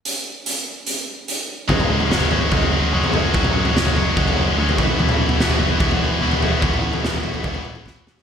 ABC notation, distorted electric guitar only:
X:1
M:4/4
L:1/8
Q:1/4=146
K:F#m
V:1 name="Distorted electric guitar"
z8 | [F,G,CF]2 [F,G,CF] [F,G,CF] [F,G,CF]2 [F,G,CF] [F,G,CF] | [F,G,CF]2 [F,G,CF] [F,G,CF] [F,G,CF]2 [F,G,CF] [E,,B,,E,B,EF] | [E,,B,,E,B,EF]2 [E,,B,,E,B,EF] [E,,B,,E,B,EF] [E,,B,,E,B,EF]2 [E,,B,,E,B,EF] [E,,B,,E,B,EF] |
[E,,B,,E,B,EF]2 [E,,B,,E,B,EF] [E,,B,,E,B,EF] [E,,B,,E,B,EF]2 [E,,B,,E,B,EF] [E,,B,,E,B,EF] |]